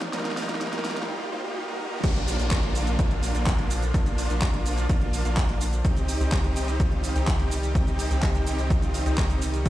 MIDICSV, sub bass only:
0, 0, Header, 1, 2, 480
1, 0, Start_track
1, 0, Key_signature, -3, "minor"
1, 0, Tempo, 476190
1, 133, Time_signature, 4, 2, 24, 8
1, 9768, End_track
2, 0, Start_track
2, 0, Title_t, "Sub bass"
2, 0, Program_c, 0, 38
2, 2054, Note_on_c, 0, 34, 95
2, 2390, Note_off_c, 0, 34, 0
2, 2414, Note_on_c, 0, 34, 96
2, 2630, Note_off_c, 0, 34, 0
2, 2655, Note_on_c, 0, 34, 101
2, 2990, Note_off_c, 0, 34, 0
2, 3014, Note_on_c, 0, 34, 95
2, 3350, Note_off_c, 0, 34, 0
2, 3375, Note_on_c, 0, 34, 99
2, 3590, Note_off_c, 0, 34, 0
2, 3615, Note_on_c, 0, 34, 93
2, 3950, Note_off_c, 0, 34, 0
2, 3974, Note_on_c, 0, 34, 90
2, 4310, Note_off_c, 0, 34, 0
2, 4334, Note_on_c, 0, 34, 91
2, 4550, Note_off_c, 0, 34, 0
2, 4575, Note_on_c, 0, 34, 101
2, 4910, Note_off_c, 0, 34, 0
2, 4934, Note_on_c, 0, 34, 101
2, 5270, Note_off_c, 0, 34, 0
2, 5294, Note_on_c, 0, 34, 97
2, 5510, Note_off_c, 0, 34, 0
2, 5533, Note_on_c, 0, 34, 95
2, 5869, Note_off_c, 0, 34, 0
2, 5894, Note_on_c, 0, 36, 97
2, 6230, Note_off_c, 0, 36, 0
2, 6253, Note_on_c, 0, 36, 97
2, 6469, Note_off_c, 0, 36, 0
2, 6494, Note_on_c, 0, 36, 96
2, 6830, Note_off_c, 0, 36, 0
2, 6853, Note_on_c, 0, 36, 100
2, 7190, Note_off_c, 0, 36, 0
2, 7213, Note_on_c, 0, 36, 93
2, 7429, Note_off_c, 0, 36, 0
2, 7453, Note_on_c, 0, 36, 95
2, 7790, Note_off_c, 0, 36, 0
2, 7814, Note_on_c, 0, 36, 95
2, 8150, Note_off_c, 0, 36, 0
2, 8174, Note_on_c, 0, 36, 96
2, 8390, Note_off_c, 0, 36, 0
2, 8413, Note_on_c, 0, 36, 103
2, 8750, Note_off_c, 0, 36, 0
2, 8774, Note_on_c, 0, 36, 97
2, 9110, Note_off_c, 0, 36, 0
2, 9134, Note_on_c, 0, 36, 96
2, 9350, Note_off_c, 0, 36, 0
2, 9374, Note_on_c, 0, 36, 98
2, 9710, Note_off_c, 0, 36, 0
2, 9734, Note_on_c, 0, 32, 97
2, 9768, Note_off_c, 0, 32, 0
2, 9768, End_track
0, 0, End_of_file